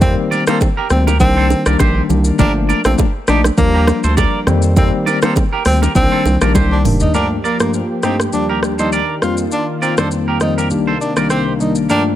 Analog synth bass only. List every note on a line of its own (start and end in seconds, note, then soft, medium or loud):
0.00 0.16 F2 loud
0.90 1.21 D2 loud
1.20 1.54 C2 loud
1.66 1.76 C2 medium
1.80 2.02 A#1 loud
2.09 2.31 C2 loud
2.39 2.73 G1 loud
2.85 2.95 A#1 medium
3.28 3.50 A#1 loud
3.58 3.92 D#2 loud
4.04 4.26 D2 medium
4.47 4.91 F2 loud
5.66 5.88 D2 medium
5.95 6.07 C2 loud
6.25 6.37 C2 loud
6.41 6.56 A#1 medium
6.55 6.86 C2 loud
6.85 7.07 F1 loud